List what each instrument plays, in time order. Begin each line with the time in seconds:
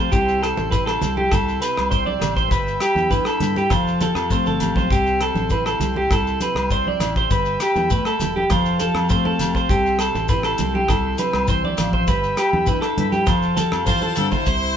Already playing: clean electric guitar C4 G4 A4 C5, transistor combo organ F5 G5 A5
0.12 fingered electric bass C2, clean electric guitar C3 G3 E4 G4 C5, transistor combo organ E5 C6, kick, shekere
0.28 shekere
0.42 clean electric guitar G4 A4, cross-stick, closed hi-hat, low agogo
0.57 fingered electric bass A1, high conga, shekere
0.70 clean electric guitar G3 E4 B4, kick, shekere
0.86 clean electric guitar A4, cross-stick, low agogo, shekere
1.01 fingered electric bass C2, clean electric guitar G4, closed hi-hat, high conga, low conga, shekere
1.17 clean electric guitar G4, high conga
1.31 fingered electric bass C2, clean electric guitar E4 A4, kick, cross-stick, low conga, low agogo, shekere
1.49 shekere
1.60 clean electric guitar C3 G4 B4, closed hi-hat, shekere
1.77 fingered electric bass C2, cross-stick, low agogo
1.90 clean electric guitar C5 D5, kick, shekere
2.06 clean electric guitar D5, high conga
2.19 fingered electric bass A1, clean electric guitar G4, cross-stick, closed hi-hat, low conga, low agogo, shekere
2.37 clean electric guitar C5, kick, shekere
2.48 fingered electric bass G1, clean electric guitar G3 B4, kick, shekere
2.53 transistor combo organ B5
2.68 shekere
2.80 clean electric guitar G4 B4, cross-stick, closed hi-hat, low agogo, shekere
2.95 fingered electric bass E2, high conga, shekere
3.10 clean electric guitar D4 E4 B4, kick, shekere
3.25 clean electric guitar A4, cross-stick, low agogo, shekere
3.40 fingered electric bass G2, clean electric guitar B4, closed hi-hat, low conga, shekere
3.56 clean electric guitar G4, high conga, shekere
3.70 fingered electric bass F1, clean electric guitar F3 A4 C5, transistor combo organ F5 A5, kick, cross-stick, low conga, low agogo, shekere
3.88 shekere
4.01 clean electric guitar G4 A4, closed hi-hat, high conga, low conga, shekere
4.15 fingered electric bass F2, cross-stick, low agogo, shekere
4.30 clean electric guitar A3 C4 C5, kick, shekere
4.46 fingered electric bass G1, clean electric guitar A4, high conga, shekere
4.60 fingered electric bass A1, clean electric guitar G4, closed hi-hat, low conga, low agogo, shekere
4.76 fingered electric bass B1, clean electric guitar C5, kick, low conga, shekere
4.90 fingered electric bass C2, clean electric guitar C3 G4 C5, transistor combo organ E5 C6, kick, shekere
5.07 shekere
5.21 clean electric guitar G4 A4, cross-stick, closed hi-hat, low agogo
5.35 fingered electric bass A1, high conga, shekere
5.50 clean electric guitar G3 E4 B4, kick, shekere
5.66 clean electric guitar A4, cross-stick, low agogo, shekere
5.80 fingered electric bass C2, clean electric guitar G4, closed hi-hat, high conga, low conga, shekere
5.96 clean electric guitar G4, high conga
6.11 fingered electric bass C2, clean electric guitar E4 A4, kick, cross-stick, low conga, low agogo, shekere
6.27 shekere
6.40 clean electric guitar C3 G4 B4, closed hi-hat, high conga, shekere
6.55 fingered electric bass C2, cross-stick, low agogo
6.71 clean electric guitar C5 D5, kick, shekere
6.87 clean electric guitar D5, high conga
7.00 fingered electric bass A1, clean electric guitar E4, cross-stick, closed hi-hat, low conga, low agogo, shekere
7.16 clean electric guitar G4 C5, kick, shekere
7.31 fingered electric bass G1, clean electric guitar G3 B4, transistor combo organ B5, kick, shekere
7.45 shekere
7.60 clean electric guitar G4 B4, cross-stick, closed hi-hat, low agogo, shekere
7.75 fingered electric bass E2, high conga, shekere
7.90 clean electric guitar A3 B4, kick, shekere
8.05 clean electric guitar A4, cross-stick, low agogo, shekere
8.19 fingered electric bass E1, clean electric guitar G3, closed hi-hat, high conga, low conga, shekere
8.36 clean electric guitar G4, high conga
8.50 fingered electric bass F1, clean electric guitar F3 A4 C5, transistor combo organ F5 G5 A5, kick, cross-stick, low conga, low agogo, shekere
8.66 shekere
8.80 clean electric guitar G4 A4, closed hi-hat, high conga, shekere
8.94 fingered electric bass F2, cross-stick, low agogo
9.09 clean electric guitar A3 C4 C5, kick, shekere
9.25 clean electric guitar A4, high conga
9.39 fingered electric bass F1, clean electric guitar G4, closed hi-hat, low conga, low agogo, shekere
9.55 clean electric guitar C5, kick, shekere
9.69 fingered electric bass C2, clean electric guitar C3 G4 A4, transistor combo organ E5 C6, kick, shekere
9.85 clean electric guitar C5, shekere
9.99 clean electric guitar G4 A4, cross-stick, closed hi-hat, low agogo, shekere
10.15 fingered electric bass A1, high conga, shekere
10.28 clean electric guitar G3 E4 B4, kick, shekere
10.43 clean electric guitar A4, cross-stick, low agogo, shekere
10.58 fingered electric bass C2, clean electric guitar G4, closed hi-hat, high conga, low conga, shekere
10.75 clean electric guitar G4, high conga
10.88 fingered electric bass C2, clean electric guitar E4 A4, kick, cross-stick, low conga, low agogo, shekere
11.18 clean electric guitar C3 G4 B4, closed hi-hat, high conga, shekere
11.33 fingered electric bass C2, cross-stick, low agogo
11.48 clean electric guitar E3 C5, kick, shekere
11.65 clean electric guitar D5, high conga
11.78 fingered electric bass A1, clean electric guitar F3, cross-stick, closed hi-hat, low conga, low agogo, shekere
11.93 clean electric guitar C5, kick
12.07 fingered electric bass G1, clean electric guitar G3 B4, transistor combo organ G5 B5, kick, shekere
12.24 shekere
12.37 clean electric guitar G4 B4, cross-stick, closed hi-hat, low agogo, shekere
12.53 fingered electric bass E2, high conga
12.66 clean electric guitar D4 E4 B4, kick, shekere
12.81 clean electric guitar A4, cross-stick, low agogo, shekere
12.97 fingered electric bass G2, clean electric guitar B4, closed hi-hat, high conga, low conga
13.12 clean electric guitar G4, high conga, shekere
13.27 fingered electric bass F1, clean electric guitar F3 A4 C5, transistor combo organ F5 G5 A5, kick, cross-stick, low conga, low agogo, shekere
13.42 shekere
13.56 clean electric guitar G4 A4, closed hi-hat, high conga, low conga, shekere
13.72 fingered electric bass F2, cross-stick, high conga, low agogo, shekere
13.86 clean electric guitar E3 C5, horn section F4 C5, kick, high conga, shekere
14.01 clean electric guitar A4, high conga, shekere
14.15 fingered electric bass G2, clean electric guitar D3, horn section C4 A4, closed hi-hat, low conga, low agogo, shekere
14.30 horn section E4 C5, clean electric guitar C5, kick, low conga, shekere
14.46 fingered electric bass C2, clean electric guitar C3 G4 C5, kick, closed hi-hat, shekere